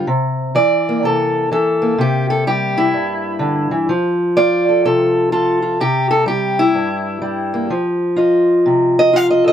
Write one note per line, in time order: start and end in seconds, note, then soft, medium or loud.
0.07 0.55 C3 medium
0.55 1.50 E3 medium
0.55 1.03 D5 medium
0.89 1.81 A#3 soft
1.03 1.51 C3 medium
1.03 1.51 A4 medium
1.51 1.97 E3 medium
1.51 1.99 A4 medium
1.82 3.89 A#3 soft
1.98 2.94 C3 medium
1.98 2.30 G4 medium
2.30 2.46 A4 medium
2.47 3.88 G3 medium
2.47 2.78 G4 medium
2.78 3.89 E4 medium
2.94 3.89 G2 medium
3.39 3.71 D3 medium
3.71 3.88 E3 medium
3.89 5.80 F3 medium
4.37 5.31 F4 medium
4.37 4.84 D5 loud
4.69 4.84 A4 soft
4.85 5.78 C3 medium
4.85 5.31 A4 medium
5.32 5.61 F4 medium
5.32 5.80 A4 medium
5.62 5.77 F4 soft
5.80 6.75 C3 medium
5.80 6.10 G4 medium
6.11 6.27 A4 medium
6.26 7.20 G3 medium
6.26 6.59 G4 medium
6.59 7.70 E4 loud
6.74 7.70 G2 medium
7.22 7.68 G3 medium
7.54 7.70 A#3 soft
7.70 9.53 F3 medium
8.16 9.12 F4 medium
8.16 8.97 D#5 soft
8.66 9.53 C3 medium
8.99 9.16 D#5 loud
9.13 9.53 F4 medium
9.13 9.30 F5 medium
9.30 9.46 D#5 medium
9.44 9.53 A4 soft
9.44 9.53 D#5 loud